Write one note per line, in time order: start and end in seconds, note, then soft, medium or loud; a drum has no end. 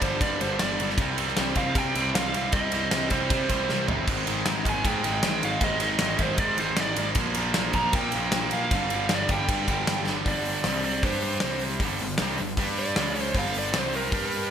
0.02 0.20 G1 medium
0.02 0.21 G2 loud
0.02 0.21 D3 loud
0.02 0.23 G3 medium
0.02 0.22 C5 medium
0.02 kick medium
0.02 ride medium
0.21 0.38 G2 loud
0.21 0.40 G2 medium
0.21 0.41 D3 loud
0.21 0.43 G3 loud
0.21 0.41 D5 loud
0.21 kick loud
0.21 ride loud
0.41 0.59 G1 medium
0.41 0.60 G2 medium
0.41 0.61 D3 loud
0.41 0.62 G3 medium
0.41 0.60 C5 medium
0.41 ride medium
0.59 0.78 G1 loud
0.59 0.80 G2 medium
0.59 0.80 D3 medium
0.59 0.82 G3 medium
0.59 0.87 D5 medium
0.59 snare loud
0.59 ride loud
0.80 0.97 G1 medium
0.80 0.98 G2 medium
0.80 0.99 D3 loud
0.80 1.01 G3 loud
0.80 ride medium
0.89 snare soft
0.98 1.33 C2 loud
0.98 1.18 C3 loud
0.98 1.19 G3 loud
0.98 1.19 C4 loud
0.98 kick loud
0.98 ride loud
1.18 1.37 C3 medium
1.18 1.38 G3 loud
1.18 1.38 C4 loud
1.18 ride medium
1.28 snare soft
1.36 1.55 C2 loud
1.36 1.56 C3 medium
1.36 1.57 G3 loud
1.36 1.57 C4 loud
1.36 snare loud
1.36 ride medium
1.55 1.74 C2 loud
1.55 1.74 C3 medium
1.55 1.74 G3 medium
1.55 1.76 C4 loud
1.55 1.78 F5 loud
1.55 kick medium
1.55 ride medium
1.75 1.94 C3 medium
1.75 1.93 C3 loud
1.75 1.95 G3 loud
1.75 1.96 C4 loud
1.75 2.14 G5 loud
1.75 kick loud
1.75 ride loud
1.95 2.13 C2 medium
1.95 2.13 C3 medium
1.95 2.15 G3 medium
1.95 2.16 C4 medium
1.95 ride medium
2.14 2.32 C2 loud
2.14 2.33 C3 medium
2.14 2.34 G3 loud
2.14 2.35 C4 medium
2.14 2.55 F5 loud
2.14 snare loud
2.14 ride loud
2.34 2.52 C2 medium
2.34 2.53 C3 medium
2.34 2.53 G3 loud
2.34 2.55 C4 loud
2.34 ride medium
2.52 2.88 C2 loud
2.52 2.72 C3 medium
2.52 2.72 G3 loud
2.52 2.74 C4 loud
2.52 3.07 D#5 loud
2.52 kick loud
2.52 ride loud
2.72 2.92 C3 medium
2.72 2.92 G3 medium
2.72 2.94 C4 medium
2.72 ride medium
2.91 3.10 C2 medium
2.91 3.10 C3 loud
2.91 3.10 G3 loud
2.91 3.12 C4 loud
2.91 snare loud
2.91 ride loud
3.10 3.29 C2 loud
3.10 3.29 C3 loud
3.10 3.30 G3 loud
3.10 3.31 C4 loud
3.10 3.85 C5 medium
3.10 kick medium
3.10 ride medium
3.30 3.48 C3 loud
3.30 3.48 C3 medium
3.30 3.49 G3 medium
3.30 3.51 C4 loud
3.30 kick loud
3.30 ride loud
3.49 3.67 C2 medium
3.49 3.68 C3 loud
3.49 3.68 G3 medium
3.49 3.70 C4 loud
3.49 kick medium
3.49 ride medium
3.69 3.87 C2 medium
3.69 3.87 C3 medium
3.69 3.88 G3 loud
3.69 3.89 C4 loud
3.69 snare medium
3.88 4.06 G1 medium
3.88 4.07 C3 medium
3.88 4.07 G3 medium
3.88 7.19 C4 loud
3.88 floor tom loud
4.07 4.42 G#1 loud
4.07 4.26 G#2 medium
4.07 4.26 D#3 medium
4.07 4.27 G#3 loud
4.07 kick loud
4.07 crash loud
4.27 4.46 G#2 medium
4.27 4.46 D#3 medium
4.27 4.47 G#3 loud
4.27 ride medium
4.46 4.64 G#1 medium
4.46 4.65 G#2 medium
4.46 4.65 D#3 loud
4.46 4.67 G#3 loud
4.46 snare loud
4.46 ride medium
4.65 4.83 G#1 loud
4.65 4.83 G#2 medium
4.65 4.84 D#3 medium
4.65 4.85 G#3 loud
4.65 kick medium
4.65 ride medium
4.69 4.87 G#5 loud
4.85 5.02 G#2 loud
4.85 5.03 D#3 loud
4.85 5.04 G#3 loud
4.85 5.46 G5 loud
4.85 kick loud
4.85 ride loud
5.03 5.22 G#1 loud
5.03 5.22 G#2 medium
5.03 5.23 D#3 medium
5.03 5.23 G#3 loud
5.03 ride medium
5.23 5.41 G#1 loud
5.23 5.41 G#2 medium
5.23 5.42 D#3 loud
5.23 5.43 G#3 loud
5.23 snare loud
5.23 ride loud
5.42 5.60 G#1 medium
5.42 5.61 G#2 medium
5.42 5.62 D#3 medium
5.42 5.63 G#3 loud
5.42 5.64 F5 loud
5.42 ride medium
5.61 5.96 G#1 medium
5.61 5.80 G#2 medium
5.61 5.81 D#3 loud
5.61 5.81 G#3 loud
5.61 5.81 D#5 loud
5.61 kick loud
5.61 ride loud
5.80 6.00 G#2 medium
5.80 6.01 D#3 loud
5.80 6.01 G#3 loud
5.80 6.22 D#5 medium
5.80 ride medium
5.99 6.18 G#1 medium
5.99 6.19 G#2 medium
5.99 6.20 D#3 loud
5.99 6.20 G#3 loud
5.99 snare loud
5.99 ride loud
6.19 6.37 G#1 loud
6.19 6.38 G#2 medium
6.19 6.38 D#3 medium
6.19 6.39 G#3 loud
6.19 kick medium
6.19 ride medium
6.23 6.39 C5 medium
6.38 6.56 G#2 loud
6.38 6.57 G#2 loud
6.38 6.58 D#3 loud
6.38 6.59 G#3 loud
6.38 6.60 D5 medium
6.38 kick loud
6.38 ride loud
6.58 6.76 G#1 medium
6.58 6.77 G#2 medium
6.58 6.79 D#3 loud
6.58 6.79 G#3 loud
6.58 6.81 C5 medium
6.58 ride medium
6.76 6.96 G#1 medium
6.76 6.97 G#2 medium
6.76 6.98 D#3 medium
6.76 6.99 G#3 medium
6.76 snare loud
6.76 ride loud
6.81 7.09 D5 medium
6.96 7.15 G#1 medium
6.96 7.17 G#2 medium
6.96 7.17 D#3 medium
6.96 7.17 G#3 medium
6.96 ride loud
7.15 7.51 A#1 loud
7.15 7.36 A#2 medium
7.15 kick loud
7.15 ride loud
7.19 7.37 F3 loud
7.19 7.38 A#3 loud
7.34 7.56 A#2 medium
7.34 7.57 F3 loud
7.34 ride medium
7.39 7.58 A#3 loud
7.54 7.73 A#1 medium
7.54 7.75 A#2 medium
7.54 7.76 F3 loud
7.54 snare loud
7.54 ride loud
7.58 7.77 A#3 loud
7.73 7.92 A#1 loud
7.73 7.94 A#2 medium
7.73 7.95 F3 medium
7.73 7.95 A#5 loud
7.73 kick medium
7.73 ride medium
7.78 7.96 A#3 medium
7.93 8.11 A#2 loud
7.93 8.14 A#2 loud
7.93 8.14 F3 loud
7.93 8.15 A#3 loud
7.93 8.53 G5 loud
7.93 kick loud
7.93 ride loud
8.12 8.32 A#1 medium
8.12 8.33 A#2 medium
8.12 8.34 F3 medium
8.12 8.34 A#3 loud
8.12 ride medium
8.32 8.51 A#1 loud
8.32 8.52 A#2 medium
8.32 8.53 F3 loud
8.32 8.53 A#3 loud
8.32 snare loud
8.32 ride loud
8.51 8.70 A#1 medium
8.51 8.71 A#2 medium
8.51 8.72 F3 medium
8.51 8.72 A#3 medium
8.51 9.13 F5 loud
8.51 ride medium
8.71 9.06 G1 loud
8.71 8.91 G2 medium
8.71 8.92 D3 loud
8.71 8.93 G3 loud
8.71 kick loud
8.71 ride loud
8.90 9.10 G2 loud
8.90 9.11 D3 loud
8.90 9.12 G3 loud
8.90 ride medium
9.09 9.28 G1 medium
9.09 9.30 G2 loud
9.09 9.30 D3 loud
9.09 9.31 G3 loud
9.09 snare loud
9.09 ride medium
9.15 9.33 D5 medium
9.29 9.47 G1 loud
9.29 9.50 G2 loud
9.29 9.50 D3 loud
9.29 9.51 G3 loud
9.29 10.04 G5 medium
9.29 kick medium
9.29 ride medium
9.48 9.66 G2 loud
9.48 9.68 G2 loud
9.48 9.69 D3 loud
9.48 9.70 G3 loud
9.48 kick loud
9.48 ride loud
9.68 9.86 G1 medium
9.68 9.87 G2 medium
9.68 9.88 D3 medium
9.68 9.89 G3 medium
9.68 kick medium
9.68 ride medium
9.87 10.05 G1 medium
9.87 10.07 G2 medium
9.87 10.08 D3 medium
9.87 10.09 G3 medium
9.87 snare loud
9.87 ride loud
10.07 10.25 G1 medium
10.07 10.26 G2 medium
10.07 10.27 D3 loud
10.07 10.27 G3 medium
10.07 snare medium
10.26 10.62 G1 medium
10.26 10.66 G2 medium
10.26 10.66 D3 loud
10.26 10.66 G3 loud
10.26 10.84 D5 loud
10.26 kick loud
10.26 open hi-hat medium
10.45 open hi-hat medium
10.64 11.02 C2 medium
10.64 11.04 C3 loud
10.64 11.04 G3 loud
10.64 11.05 C4 loud
10.64 snare medium
10.64 open hi-hat medium
10.84 11.04 D5 medium
10.84 open hi-hat medium
11.03 11.40 G2 loud
11.03 11.43 G3 medium
11.03 11.43 D4 medium
11.03 11.22 C5 medium
11.03 kick loud
11.03 open hi-hat medium
11.07 11.44 G4 loud
11.12 snare soft
11.21 11.61 C5 medium
11.21 open hi-hat medium
11.40 11.79 C2 loud
11.40 11.82 C3 medium
11.40 snare loud
11.40 open hi-hat medium
11.45 11.82 G3 loud
11.45 11.83 C4 loud
11.59 open hi-hat medium
11.80 11.99 G1 medium
11.80 12.01 G2 medium
11.80 12.01 D3 medium
11.80 12.02 G3 loud
11.80 kick loud
11.80 open hi-hat medium
11.99 12.19 G1 medium
11.99 12.17 G2 medium
11.99 open hi-hat medium
12.03 12.18 D3 medium
12.18 12.39 C2 medium
12.18 12.39 C3 loud
12.18 12.40 G3 loud
12.18 snare loud
12.18 open hi-hat medium
12.22 12.40 C4 loud
12.38 12.57 G1 medium
12.38 12.56 G2 medium
12.38 12.56 D3 medium
12.38 open hi-hat medium
12.57 12.94 G2 loud
12.57 12.97 G3 medium
12.57 12.97 D4 loud
12.57 12.98 G4 loud
12.57 kick loud
12.57 open hi-hat medium
12.77 13.23 D5 loud
12.77 open hi-hat medium
12.96 13.34 C#2 loud
12.96 13.35 C#3 medium
12.96 13.36 G#3 loud
12.96 13.36 C#4 loud
12.96 snare loud
12.96 open hi-hat medium
13.15 open hi-hat medium
13.23 13.35 C5 loud
13.34 13.72 G1 loud
13.34 13.74 G2 medium
13.34 13.73 D3 medium
13.34 13.73 G3 loud
13.34 kick loud
13.34 open hi-hat medium
13.39 13.57 F5 loud
13.54 open hi-hat medium
13.59 13.76 D5 medium
13.74 14.11 C2 loud
13.74 14.13 C3 loud
13.74 14.11 G3 loud
13.74 14.12 C4 loud
13.74 snare loud
13.74 open hi-hat medium
13.79 13.96 C5 medium
13.93 14.51 A#4 loud
13.93 open hi-hat medium
14.12 14.49 G2 loud
14.12 14.50 G3 medium
14.12 14.51 D4 medium
14.12 14.51 G4 loud
14.12 kick loud
14.12 open hi-hat medium
14.31 open hi-hat medium